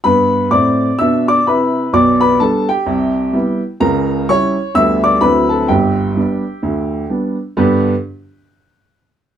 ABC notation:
X:1
M:4/4
L:1/8
Q:"Swing" 1/4=127
K:G
V:1 name="Grand piano"
[Bb]2 [dd']2 [ee'] [dd'] [Bb]2 | [dd'] [Bb] [Aa] [Gg]4 z | [^A^a]2 [^c^c']2 [ee'] [dd'] [Bb] [=A=a] | [Gg]6 z2 |
[G,,D,B,DGB] z6 z |]
V:2 name="Grand piano" clef=bass
[G,,B,]2 [A,,C]2 [B,,D]2 [C,E]2 | [B,,,B,,]2 [G,B,D]2 [C,,C,]2 [G,B,E]2 | [^C,,^C,]2 [G,^CE]2 [D,,D,G,B,D]2 [D,,D,F,=CE]2 | [G,,,G,,]2 [G,B,D]2 [D,,D,]2 [G,B,D]2 |
z8 |]